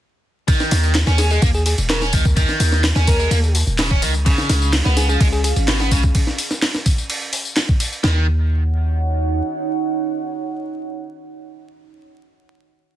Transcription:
0.48 overdriven electric guitar D#3, kick, ride, tambourine
0.60 snare, tambourine
0.71 808-style bass D#2, snare, open hi-hat, ride, tambourine
0.83 tambourine
0.95 snare, clap, ride, tambourine
1.07 808-style bass D#2, overdriven electric guitar C#4, snare, tambourine
1.18 fm electric piano G#4, snare, open hi-hat, ride, tambourine
1.31 overdriven electric guitar G#3, fm electric piano G#4, tambourine
1.42 808-style bass D#2, overdriven electric guitar A#3, kick, ride, tambourine
1.54 fm electric piano G#4, tambourine
1.66 fm electric piano G#4, open hi-hat, ride, tambourine
1.78 808-style bass D#1, ride, tambourine
1.89 overdriven electric guitar C#3, fm electric piano A#4, snare, clap, ride, tambourine
2.02 overdriven electric guitar C#4, snare, tambourine
2.13 808-style bass D#2, overdriven electric guitar D#3, kick, open hi-hat, ride, tambourine
2.25 kick, tambourine
2.36 overdriven electric guitar D#3, kick, ride, tambourine
2.49 snare, tambourine
2.60 808-style bass D#2, open hi-hat, ride, tambourine
2.72 snare, tambourine
2.84 snare, clap, ride, tambourine
2.96 808-style bass D#2, overdriven electric guitar C#4, snare, tambourine
3.07 fm electric piano A#4, kick, open hi-hat, ride, tambourine
3.19 overdriven electric guitar G#3, tambourine
3.31 808-style bass D#2, overdriven electric guitar A#3, ride, tambourine
3.44 tambourine
3.55 open hi-hat, tambourine
3.67 808-style bass D#1, tambourine
3.78 overdriven electric guitar C#3, snare, clap, ride, tambourine
3.90 overdriven electric guitar C#4, kick, tambourine
4.02 808-style bass C#2, overdriven electric guitar D#3, open hi-hat, ride, tambourine
4.14 tambourine
4.25 overdriven electric guitar C#3, ambient pad C#4 G#4 F5, kick, ride, tambourine
4.38 snare, tambourine
4.49 808-style bass C#2, snare, open hi-hat, ride, tambourine
4.62 tambourine
4.73 snare, clap, ride, tambourine
4.85 808-style bass C#2, overdriven electric guitar B3, snare, tambourine
4.97 fm electric piano G#4, snare, open hi-hat, ride, tambourine
5.09 overdriven electric guitar F3, fm electric piano G#4, tambourine
5.20 808-style bass C#2, overdriven electric guitar G#3, kick, ride, tambourine
5.32 fm electric piano G#4, tambourine
5.44 fm electric piano G#4, open hi-hat, ride, tambourine
5.56 808-style bass G#1, ride, tambourine
5.68 overdriven electric guitar B2, snare, clap, ride, tambourine
5.80 overdriven electric guitar B3, snare, tambourine
5.91 808-style bass C#2, overdriven electric guitar C#3, kick, open hi-hat, ride, tambourine
6.03 kick, tambourine
6.15 kick, ride, tambourine
6.27 snare, tambourine
6.38 open hi-hat, ride, tambourine
6.51 snare, tambourine
6.62 snare, clap, ride, tambourine
6.74 snare, tambourine
6.86 kick, open hi-hat, ride, tambourine
6.98 tambourine
7.10 ride, tambourine
7.22 tambourine
7.33 open hi-hat, tambourine
7.45 tambourine
7.56 snare, clap, ride, tambourine
7.69 kick, tambourine
7.80 open hi-hat, ride, tambourine
7.92 tambourine
8.04 808-style bass D#2, overdriven electric guitar D#3, ambient pad D#4 C#5 F#5, snare

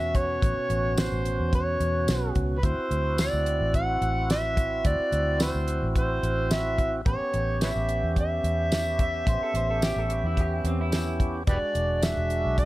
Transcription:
Already playing: fingered electric bass E2, tonewheel organ B2 C#4 F#4, harmonica E5
0.15 harmonica C#5, kick, closed hi-hat
0.42 fingered electric bass A1, kick, closed hi-hat
0.70 fingered electric bass A1, closed hi-hat
0.98 harmonica C5, snare, closed hi-hat, tambourine
1.12 fingered electric bass A1
1.25 closed hi-hat
1.39 fingered electric bass E2
1.53 harmonica C#5, kick, closed hi-hat
1.80 fingered electric bass E2, closed hi-hat
2.08 fingered electric bass B1, snare, closed hi-hat, tambourine
2.35 fingered electric bass C#2, kick, closed hi-hat
2.58 harmonica B4
2.63 fingered electric bass D2, tonewheel organ C4 E4 F#4, harmonica C5, kick, closed hi-hat
2.91 fingered electric bass D2, closed hi-hat
3.18 harmonica D5, snare, closed hi-hat, tambourine
3.33 fingered electric bass D2
3.46 closed hi-hat
3.61 fingered electric bass A1
3.74 harmonica F#5, kick, closed hi-hat
4.01 fingered electric bass A1, closed hi-hat
4.30 harmonica E5, snare, closed hi-hat, tambourine
4.57 kick, closed hi-hat
4.85 fingered electric bass D2, harmonica D5, kick, closed hi-hat
5.00 muted fingered electric bass stroke
5.12 fingered electric bass D2, closed hi-hat
5.40 harmonica C5, snare, closed hi-hat, tambourine
5.55 fingered electric bass D2
5.68 closed hi-hat
5.83 fingered electric bass A1
5.96 harmonica C5, kick, closed hi-hat
6.23 fingered electric bass A1, closed hi-hat
6.51 harmonica E5, snare, closed hi-hat, tambourine
6.78 kick, closed hi-hat
7.05 fingered electric bass A1, tonewheel organ B3 C#4 G4, harmonica C#5, kick, closed hi-hat
7.20 muted fingered electric bass stroke
7.34 fingered electric bass A1, closed hi-hat
7.61 harmonica B4 C#5 E5, snare, closed hi-hat, tambourine
7.75 fingered electric bass A1
7.89 closed hi-hat
8.03 fingered electric bass E2
8.16 harmonica E5, kick, closed hi-hat
8.44 fingered electric bass E2, closed hi-hat
8.72 snare, closed hi-hat, tambourine
8.99 clean electric guitar E5, kick, closed hi-hat
9.27 fingered electric bass A1, clean electric guitar C5, kick, closed hi-hat
9.41 clean electric guitar A4, muted fingered electric bass stroke
9.54 fingered electric bass A1, clean electric guitar C5, closed hi-hat
9.71 clean electric guitar A4
9.82 clean electric guitar G4, snare, closed hi-hat, tambourine
9.96 fingered electric bass A1, clean electric guitar A4
10.10 clean electric guitar G4, closed hi-hat
10.24 fingered electric bass E2, clean electric guitar E4
10.37 clean electric guitar G4, kick, closed hi-hat
10.54 clean electric guitar E4
10.64 fingered electric bass E2, clean electric guitar C4, closed hi-hat
10.81 clean electric guitar E4
10.92 clean electric guitar E4, snare, closed hi-hat, tambourine
11.20 kick, closed hi-hat
11.47 fingered electric bass E1, tonewheel organ G#3 D4 F#4, harmonica G4 B4 D5, kick, closed hi-hat
11.62 muted fingered electric bass stroke
11.75 fingered electric bass E1, closed hi-hat
12.03 harmonica E5, snare, closed hi-hat, tambourine
12.17 fingered electric bass E1
12.30 closed hi-hat
12.45 fingered electric bass B1
12.58 harmonica E5, kick, closed hi-hat

